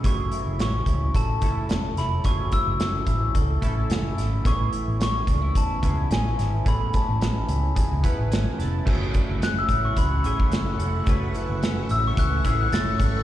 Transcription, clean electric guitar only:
X:1
M:4/4
L:1/16
Q:"Swing 16ths" 1/4=109
K:F#m
V:1 name="Clean electric guitar"
F,2 E2 C2 E2 A2 E2 C2 E2 | F,2 E2 C2 E2 A2 E2 C2 E2 | A,2 E2 C2 D E3 E2 C2 E2 | A,2 E2 C2 E2 G2 E2 C2 E2 |
F,2 D E C2 E2 C2 E2 C2 A2 | F,2 E2 C2 E2 C2 E2 C2 A2 |]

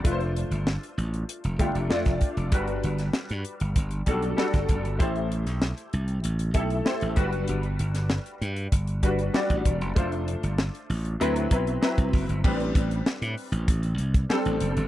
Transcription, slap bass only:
X:1
M:4/4
L:1/16
Q:1/4=97
K:Ador
V:1 name="Slap bass" clef=bass
=F,,,3 G,,,2 z A,,,2 z F,,, G,,, F,,, =F,, F,,, z F,,, | G,,,2 G,,,2 z G,, z G,,, G,,,2 B,,,2 z G,,, F,,, G,,, | A,,,3 B,,,2 z C,,2 A,,,2 B,,,2 z A,,, G,,, F,,, | G,,,2 G,,,3 z G,,2 G,,,2 G,,,2 z A,,, E,,, F,,, |
=F,,,3 G,,,2 z A,,,2 D,,2 B,,,2 z C,, ^F,,, G,,, | A,,,2 A,,,2 z A,, z A,,, A,,,2 C,,2 z A,,, F,,, G,,, |]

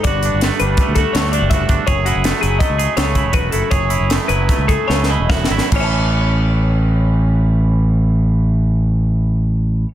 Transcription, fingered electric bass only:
X:1
M:5/4
L:1/16
Q:1/4=151
K:A
V:1 name="Fingered electric bass" clef=bass
=G,,,3 G,,,2 z G,,,2 z D,,2 z D,,3 F,,,3 G,,, z | F,,,3 F,,,2 z F,,,2 z C,,2 z C,,3 E,,,3 F,,, z | F,,,3 F,,,2 z F,,,2 z C,,2 z C,,3 E,,,3 G,,, z | A,,,16- A,,,4- |
A,,,16- A,,,4 |]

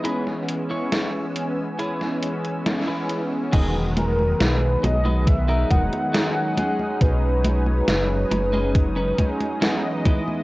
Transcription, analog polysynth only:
X:1
M:4/4
L:1/8
Q:1/4=69
K:E
V:1 name="Analog polysynth" clef=bass
[E,G,B,C]4- [E,G,B,C] [E,G,B,C] [E,G,B,C]2 | [D,F,G,B,]4- [D,F,G,B,] [F,G,B,D] [F,G,CD]2 | [F,G,CD]4- [F,G,CD] [F,G,CD] [E,G,B,d]2 |]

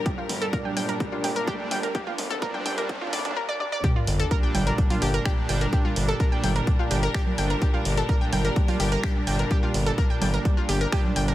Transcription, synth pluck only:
X:1
M:4/4
L:1/16
Q:1/4=127
K:Gm
V:1 name="Synth pluck"
G F z A B g g B z F G B G z g B | G F z A B g g B z F d D B d d d | G F z A B g g B z F G B G z g B | G F z A B g g B z F G B G z g B |
G F z A B g g B z F G B G z g B | G F z A B g g B z F G B G z g B |]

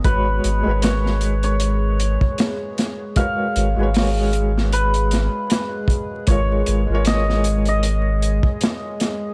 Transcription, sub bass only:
X:1
M:4/4
L:1/16
Q:"Swing 16ths" 1/4=77
K:G#dor
V:1 name="Sub bass" clef=bass
G,,,2 G,,, G,,,8 z4 z | z2 G,,, G,,,8 z4 z | G,,,2 G,,, G,,,8 z4 z |]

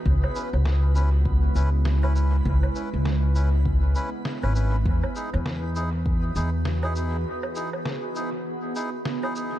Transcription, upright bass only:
X:1
M:4/4
L:1/16
Q:"Swing 16ths" 1/4=100
K:C#m
V:1 name="Upright bass" clef=bass
C,, z2 C,,6- C,, C,,6 | C,, z2 C,,6- C,, z3 G,,,3 | E,, z2 E,,6- E,, E,,6 | z16 |]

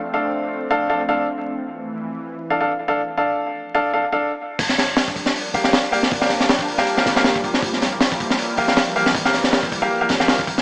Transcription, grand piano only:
X:1
M:4/4
L:1/16
Q:"Swing 16ths" 1/4=158
K:Gdor
V:1 name="Grand piano"
z [DAf]6 [DAf]2 [DAf] z [DAf]2 z3 | z8 z2 [DAf] [DAf] z2 [DAf] z | z [DAf]6 [DAf]2 [DAf] z [DAf]2 z3 | z8 z2 [B,Gf] [B,Gf] z2 [B,Gf] z |
z [B,Gf]6 [B,Gf]2 [B,Gf] z [B,Gf]2 z3 | z8 z2 [B,Gf] [B,Gf] z2 [B,Gf] z | z [B,Gf]6 [B,Gf]2 [B,Gf] z [B,Gf]2 z3 |]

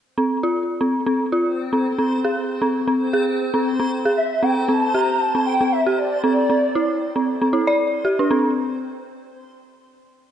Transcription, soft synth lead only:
X:1
M:4/4
L:1/8
Q:"Swing 16ths" 1/4=116
K:Cmix
V:1 name="Soft synth lead"
z8 | z8 | e g a b a g e d- | d4- d z3 |
z8 |]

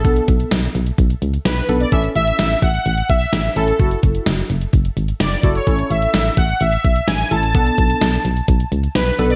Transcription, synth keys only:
X:1
M:4/4
L:1/8
Q:1/4=128
K:A
V:1 name="Synth keys"
[B,DA]3 z4 [B,DA] | [CEA]3 z4 [CEA] | [EFA]3 z4 [EFA] | [CEA]3 z4 [CEA] |
[B,DA]3 z4 [B,DA] |]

